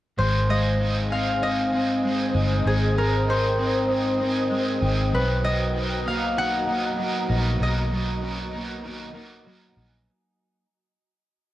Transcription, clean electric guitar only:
0.18 2.65 G#2 medium
0.49 2.03 G#3 medium
0.81 1.42 D#4 medium
1.11 1.72 C4 medium
1.42 2.35 D#4 medium
1.73 3.58 C4 medium
2.04 2.96 G#3 medium
2.35 3.28 D#4 medium
2.66 5.13 G#2 medium
2.97 4.50 G#3 medium
3.28 3.89 D#4 medium
3.59 4.20 C4 medium
3.90 4.82 D#4 medium
4.21 5.20 C4 medium
4.51 5.20 G#3 medium
4.82 5.74 D#4 medium
5.44 6.98 F#3 medium
5.74 6.36 D#4 medium
6.06 6.67 A#3 medium
6.37 7.29 D#4 medium
6.68 8.53 A#3 medium
6.99 7.91 F#3 medium
7.30 8.22 D#4 medium
7.91 9.46 F#3 medium
8.23 8.38 C#4 medium
8.38 8.83 D#4 soft
8.53 9.15 A#3 medium
8.84 9.77 D#4 medium
9.15 10.64 A#3 medium
9.46 10.64 F#3 medium
9.77 10.64 D#4 medium

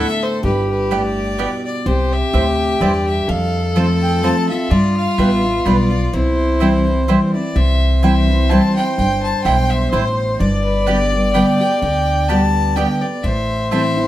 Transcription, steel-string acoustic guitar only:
0.00 0.42 A2 medium
0.43 1.34 G2 medium
0.91 1.36 A2 medium
1.39 1.84 B2 medium
1.86 2.77 C3 medium
2.33 2.79 A2 medium
2.81 3.26 G2 medium
3.29 4.19 F2 loud
3.76 4.21 F3 medium
3.76 4.21 A3 medium
3.76 4.22 C4 medium
3.76 4.22 F4 medium
4.23 4.48 F3 medium
4.23 4.48 A3 medium
4.23 4.49 C4 medium
4.23 4.48 F4 loud
4.49 4.71 C4 soft
4.49 4.70 F4 medium
4.71 5.17 G3 loud
5.18 5.43 G3 medium
5.18 5.44 B3 medium
5.18 5.43 F4 medium
5.44 5.65 B3 soft
5.44 5.65 F4 medium
5.65 5.90 G3 medium
5.65 5.91 B3 loud
5.65 5.90 F4 loud
5.91 6.13 B3 soft
5.91 6.12 F4 medium
6.13 7.04 C3 medium
6.61 6.86 E3 medium
6.61 6.86 G3 medium
6.61 6.86 C4 medium
6.61 6.86 E4 medium
6.87 7.08 C4 soft
6.87 7.08 E4 medium
7.08 7.33 E3 medium
7.08 7.33 G3 medium
7.08 7.33 C4 medium
7.08 7.33 E4 loud
7.34 7.56 C4 soft
7.34 7.55 E4 medium
7.56 8.46 C3 loud
8.03 8.28 E3 medium
8.03 8.28 G3 medium
8.03 8.28 C4 medium
8.03 8.28 E4 loud
8.29 8.51 C4 soft
8.29 8.50 E4 medium
8.51 8.76 E3 medium
8.51 8.76 G3 medium
8.51 8.76 C4 loud
8.51 8.75 E4 medium
8.76 8.98 C4 soft
8.76 8.97 E4 medium
8.99 9.89 G2 loud
9.46 9.91 B2 medium
9.93 10.38 A2 medium
10.40 11.31 G2 loud
10.87 11.12 D3 medium
10.87 11.12 G3 medium
10.87 11.13 B3 medium
10.87 11.12 G4 medium
11.13 11.35 B3 soft
11.13 11.34 G4 medium
11.34 11.59 D3 medium
11.34 11.60 G3 medium
11.34 11.60 B3 loud
11.34 11.59 G4 loud
11.61 11.82 B3 soft
11.61 11.82 G4 medium
11.82 12.28 D3 medium
12.29 12.75 D3 medium
12.29 12.75 G3 medium
12.29 12.76 B3 medium
12.29 12.76 G4 loud
12.76 13.01 D3 medium
12.76 13.02 G3 medium
12.76 13.02 B3 medium
12.76 13.01 G4 medium
13.02 13.24 B3 soft
13.02 13.23 G4 medium
13.24 14.07 A2 medium
13.72 13.96 E3 medium
13.72 13.97 A3 medium
13.72 13.97 C4 medium
13.72 13.96 E4 medium
13.97 14.07 C4 soft
13.97 14.07 E4 medium

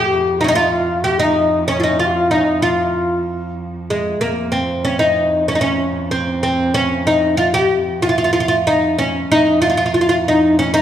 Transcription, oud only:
0.00 0.40 G4 loud
0.41 0.48 C#4 medium
0.41 0.44 D#4 medium
0.48 0.55 D#4 loud
0.55 1.04 F4 loud
1.04 1.19 G4 medium
1.19 1.67 D#4 medium
1.68 1.79 C#4 medium
1.80 1.99 D#4 medium
1.80 1.83 F4 medium
2.00 2.30 F4 medium
2.31 2.60 D#4 medium
2.62 3.54 F4 medium
3.90 4.21 G#3 medium
4.21 4.54 A#3 medium
4.52 4.84 C4 medium
4.85 4.99 C#4 medium
4.99 5.48 D#4 medium
5.48 5.55 C#4 medium
5.55 5.61 D#4 medium
5.61 6.11 C#4 medium
6.11 6.42 C4 medium
6.43 6.74 C4 medium
6.74 7.06 C#4 loud
7.07 7.37 D#4 medium
7.37 7.54 F4 medium
7.54 8.02 G4 loud
8.02 8.08 F4 medium
8.09 8.17 F4 medium
8.18 8.23 F4 medium
8.24 8.32 F4 medium
8.33 8.39 F4 medium
8.40 8.47 F4 medium
8.48 8.56 F4 medium
8.67 8.96 D#4 medium
8.98 9.28 C#4 medium
9.32 9.61 D#4 medium
9.62 9.69 F4 medium
9.70 9.76 F4 medium
9.77 9.84 F4 medium
9.86 9.92 F4 medium
9.94 10.00 F4 medium
10.01 10.07 F4 medium
10.09 10.15 F4 medium
10.28 10.58 D#4 medium
10.59 10.73 C#4 medium
10.74 10.82 D#4 medium

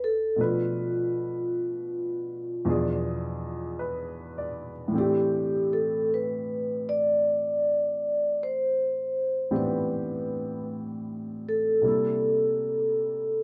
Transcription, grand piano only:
0.00 0.37 D2 soft
0.00 0.37 D3 soft
0.00 0.38 C4 soft
0.00 0.39 E4 soft
0.00 0.39 F4 soft
0.36 2.65 B2 soft
0.36 2.66 F3 soft
0.36 2.67 A3 soft
0.36 2.67 D4 soft
0.41 2.68 B4 soft
2.65 4.93 E2 soft
2.65 4.93 B2 soft
2.65 4.94 F3 soft
2.65 4.95 D4 soft
2.70 4.95 G#4 soft
3.79 4.71 B4 soft
4.38 5.19 D5 soft
4.88 9.48 A2 soft
4.88 9.49 E3 soft
4.94 9.51 A3 soft
4.94 9.50 C4 soft
4.98 9.50 D4 soft
4.98 9.51 G4 soft
9.51 11.83 A2 soft
9.51 11.83 E3 soft
9.51 11.83 B3 soft
9.51 11.83 C4 soft
9.51 11.83 D4 soft
9.51 11.84 G4 soft
11.82 13.43 C3 soft
11.82 13.43 G3 soft
11.82 13.43 A#3 soft
11.82 13.43 D4 soft
11.86 13.43 E4 soft
11.86 13.43 A4 soft

